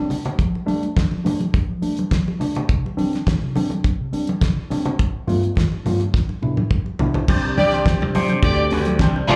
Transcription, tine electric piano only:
0.09 A3 D4
0.38 F3
0.66 G3 A3 D4
0.83 A3 D4
0.97 A3 D4
1.12 F3
1.24 G3 A3 D4
1.54 A3 D4
1.69 F3
1.82 G3 A3 D4
2.12 F3
2.40 G3 A3 D4
2.56 A3 D4
2.69 C3
2.97 G3 C4 D4
3.14 C4 D4
3.28 C4 D4
3.42 C3
3.56 G3 C4 D4
3.85 C4 D4
4.00 C3
4.13 G3 C4 D4
4.41 C3
4.71 G3 C4 D4
4.86 C4 D4
5.27 G2 A3 B3 F4
5.44 B3 F4
5.56 B3 F4
5.85 G2 A3 B3 F4
6.13 D4 E4
6.42 C3 B3 D4 E4
7.00 C3 B3 D4 E4
7.16 D4 E4

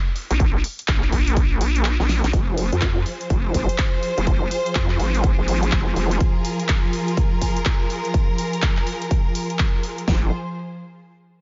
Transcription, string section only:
2.33 F3 F4 G#4 C5
6.21 A#4
10.08 F3 F4 G#4 C5

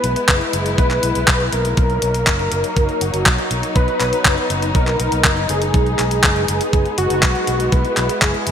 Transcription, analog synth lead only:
Already playing: B4
0.78 B4
1.53 A#4
3.02 F#4
3.76 B4
4.75 A#4
5.50 G#4
6.98 F#4
7.73 B4
8.22 G#4

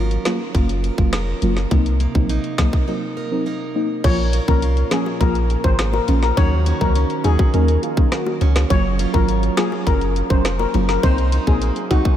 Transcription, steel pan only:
4.04 C#5
4.48 A#4
4.92 G#4
5.21 A#4
5.64 C5
5.93 A#4
6.23 A#4
6.37 C#5
6.81 A#4
7.25 G#4
8.70 C#5
9.14 A#4
9.58 G#4
9.87 A#4
10.30 C5
10.60 A#4
10.89 A#4
11.03 C5
11.47 G#4
11.91 F#4

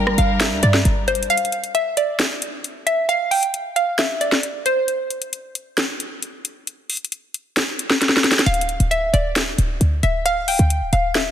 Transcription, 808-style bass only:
Already playing: G1
0.18 G1
0.52 D2
0.63 G2
0.85 G1
8.46 D1
8.80 D1
9.14 D1
9.58 D1
9.81 D2
10.03 D1
10.59 D2
10.81 C1
10.93 D1

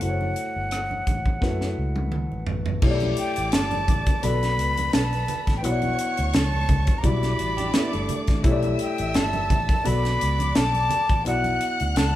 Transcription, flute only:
0.03 F#5
3.19 G5
3.53 A5
4.24 B5
4.94 A5
5.57 G5
5.65 F#5
6.35 A5
6.98 A#5
7.06 B5
8.82 G5
9.16 A5
9.86 B5
10.56 A5
11.27 F#5
11.97 A5

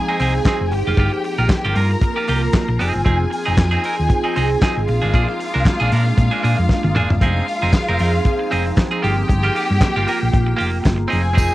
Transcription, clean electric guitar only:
0.08 C4 D#4 G#4
0.20 C4 D#4 G#4
0.46 C4 D#4 G#4
0.61 muted clean electric guitar stroke
0.72 muted clean electric guitar stroke
0.87 A#3 F4 G4
0.98 A#3 F4 G4
1.13 muted clean electric guitar stroke
1.24 muted clean electric guitar stroke
1.38 A#3 F4 A#4
1.50 muted clean electric guitar stroke
1.65 A#3 F4 G4
1.75 A#3 F4 A#4
1.91 muted clean electric guitar stroke
2.02 muted clean electric guitar stroke
2.16 A#3 F4 G4
2.28 A#3 F4 G4
2.43 muted clean electric guitar stroke
2.69 muted clean electric guitar stroke
2.79 C4 D#4 G#4
2.95 muted clean electric guitar stroke
3.05 C4 D#4 G#4
3.19 muted clean electric guitar stroke
3.30 muted clean electric guitar stroke
3.46 C4 D#4 G#4
3.56 muted clean electric guitar stroke
3.71 C4 D#4 G#4
3.83 C4 D#4 A#4
4.09 muted clean electric guitar stroke
4.24 C4 D#4 G#4
4.36 C4 D#4 G#4
4.51 muted clean electric guitar stroke
4.62 C4 D#4 G#4
4.77 muted clean electric guitar stroke
4.88 muted clean electric guitar stroke
5.02 A#3 D4 G#4
5.13 A#3 D4 G#4
5.29 muted clean electric guitar stroke
5.39 muted clean electric guitar stroke
5.54 A#3 D4 A#4
5.66 muted clean electric guitar stroke
5.80 A#3 D4 G#4
5.92 A#3 D4 A#4
6.05 muted clean electric guitar stroke
6.17 muted clean electric guitar stroke
6.31 A#3 D4 G#4
6.43 A#3 D4 G#4
6.58 muted clean electric guitar stroke
6.83 muted clean electric guitar stroke
6.95 A#3 D4 G#4
7.10 muted clean electric guitar stroke
7.22 C4 D#4 G#4
7.48 muted clean electric guitar stroke
7.62 C4 D#4 G#4
7.89 C4 D#4 A#4
7.99 C4 D#4 A#4
8.14 muted clean electric guitar stroke
8.26 muted clean electric guitar stroke
8.39 muted clean electric guitar stroke
8.51 C4 D#4 G#4
8.66 muted clean electric guitar stroke
8.76 muted clean electric guitar stroke
8.91 C4 D#4 G#4
9.02 A#3 F4 G4
9.16 muted clean electric guitar stroke
9.28 muted clean electric guitar stroke
9.43 A#3 F4 G4
9.55 A#3 F4 G4
9.69 muted clean electric guitar stroke
9.82 muted clean electric guitar stroke
9.96 A#3 F4 G4
10.07 A#3 F4 A#4
10.21 muted clean electric guitar stroke
10.32 muted clean electric guitar stroke
10.46 muted clean electric guitar stroke
10.57 A#3 F4 G4
10.72 muted clean electric guitar stroke
10.83 muted clean electric guitar stroke
10.96 muted clean electric guitar stroke
11.08 C4 D#4 G#4
11.23 muted clean electric guitar stroke
11.33 C4 D#4 G#4

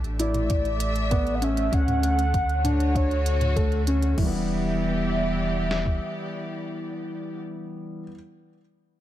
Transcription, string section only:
Already playing: A2 A3 D4 G4 E5
0.38 E5
1.73 D3
2.53 F#4 C#5
4.18 E3
4.28 B3
4.37 G4
4.47 D5

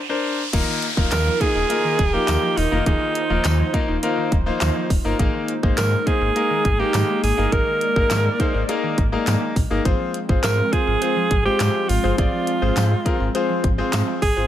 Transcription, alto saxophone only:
1.12 A#4
1.41 G#4
2.13 G4
2.57 D#4
2.87 D#4
5.78 A#4
6.07 G#4
6.80 G4
7.23 G#4
7.53 A#4
10.44 A#4
10.73 G#4
11.45 G4
11.89 F4
12.18 F4
14.22 G#4

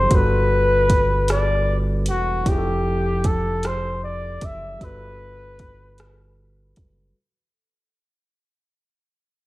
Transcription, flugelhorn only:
Already playing: C5
0.15 B4
1.32 D5
2.09 F#4
2.49 G4
3.26 A4
3.66 C5
4.04 D5
4.44 E5
4.84 B4

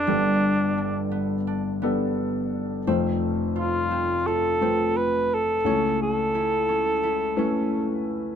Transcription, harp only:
Already playing: F3 C4 D4
0.07 G3
0.78 D4
1.11 B3
1.47 D4
1.82 B3
2.87 C4
3.56 F4
3.91 C4
4.28 F4
4.62 C4
5.66 C#4
6.35 E4
6.69 C#4
7.03 E4
7.39 C#4

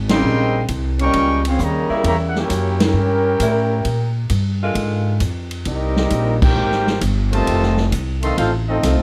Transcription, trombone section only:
0.09 C#3 G3 C4
1.00 G3 A#3 C#4
1.46 C4
1.59 C#3 G3 A#3
2.05 C#3 G3 A#3
2.35 A#3 C#4 G4
2.80 C#4 G4 A#4
5.65 G3 A#3 D#4
6.42 A#3 D#4 G4
7.32 C3 D#3 A3
8.21 D#3 A3 C4
8.37 A3 C4 F4
8.68 A3 C4 D#4

